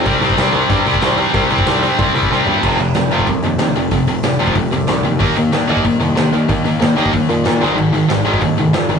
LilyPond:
<<
  \new Staff \with { instrumentName = "Distorted electric guitar" } { \clef bass \time 4/4 \key c \dorian \tempo 4 = 187 <c g c'>8 <c g c'>8 <c g c'>8 <c g c'>8 <c g c'>8 <c g c'>8 <c g c'>8 <c g c'>8 | <c g c'>8 <c g c'>8 <c g c'>8 <c g c'>8 <c g c'>8 <c g c'>8 <c g c'>8 <c g c'>8 | <f, c f>8 <f, c>8 <f, c>8 <f, c f>8 <f, c>8 <f, c>8 <f, c>8 <f, c>8 | <f, c>8 <f, c>8 <f, c>8 <f, c f>8 <f, c>8 <f, c>8 <f, c>8 <f, c>8 |
<ees bes ees'>8 <ees bes>8 <ees bes>8 <ees bes ees'>8 <ees bes>8 <ees bes>8 <ees bes>8 <ees bes>8 | <ees bes>8 <ees bes>8 <ees bes>8 <ees bes ees'>8 <ees bes>8 <ees bes>8 <ees bes>8 <aes, ees aes>8 | <aes, ees>8 <aes, ees>8 <aes, ees>8 <aes, ees aes>8 <aes, ees>8 <aes, ees>8 <aes, ees>8 <aes, ees>8 | }
  \new Staff \with { instrumentName = "Distorted electric guitar" } { \clef bass \time 4/4 \key c \dorian <c g c'>8 <c g c'>8 <c g c'>8 <c g c'>8 <c g c'>8 <c g c'>8 <c g c'>8 <c g c'>8 | <c g c'>8 <c g c'>8 <c g c'>8 <c g c'>8 <c g c'>8 <c g c'>8 <c g c'>8 <c g c'>8 | <f, c f>8 <f, c>8 <f, c>8 <f, c f>8 <f, c>8 <f, c>8 <f, c>8 <f, c>8 | <f, c>8 <f, c>8 <f, c>8 <f, c f>8 <f, c>8 <f, c>8 <f, c>8 <f, c>8 |
<ees bes ees'>8 <ees bes>8 <ees bes>8 <ees bes ees'>8 <ees bes>8 <ees bes>8 <ees bes>8 <ees bes>8 | <ees bes>8 <ees bes>8 <ees bes>8 <ees bes ees'>8 <ees bes>8 <ees bes>8 <ees bes>8 <aes, ees aes>8 | <aes, ees>8 <aes, ees>8 <aes, ees>8 <aes, ees aes>8 <aes, ees>8 <aes, ees>8 <aes, ees>8 <aes, ees>8 | }
  \new Staff \with { instrumentName = "Picked electric bass" } { \clef bass \time 4/4 \key c \dorian c,8 c,8 c,8 c,8 g,8 c,8 c,4 | c,8 c,8 c,4 c,8 c,8 c,8 g,8 | f,,8 f,,8 f,,8 f,,8 c,8 ees,8 ees,8 f,,8 | f,,4 f,,8 f,,8 f,,8 c,8 c,8 ees,8 |
ees,8 ees,8 ees,8 ees,8 bes,,8 c,8 c8 ees,8 | ees,4 ees,8 ees,8 ees,8 bes,8 bes,8 aes,,8 | aes,,8 aes,,8 aes,,8 aes,,8 ees,8 f,,8 f,8 aes,,8 | }
  \new DrumStaff \with { instrumentName = "Drums" } \drummode { \time 4/4 <hho bd>8 hho16 bd16 <hho sn>8 hho8 <hho bd>8 hho16 bd16 <hho sn>8 hho8 | <hho bd>8 hho16 bd16 <hho sn>8 hho8 <hho bd>8 hho16 bd16 sn8 tomfh8 | <cymc bd>8 hho8 <hho sn>8 hho16 bd16 <hho bd>8 hho8 <hho sn>8 hho8 | <hho bd>8 hho8 <hho sn>8 hho16 bd16 <hho bd>8 hho8 <hho sn>8 hho8 |
<hho bd>8 hho8 <hho sn>8 hho16 bd16 <hho bd>8 hho8 <hho sn>8 hho8 | <hho bd>8 hho8 <hho sn>8 hho16 bd16 <hho bd>8 hho8 <hho sn>8 sn8 | cymc8 hho8 <hho sn>8 hho16 bd16 <hho bd>8 hho8 <hho sn>8 hho8 | }
>>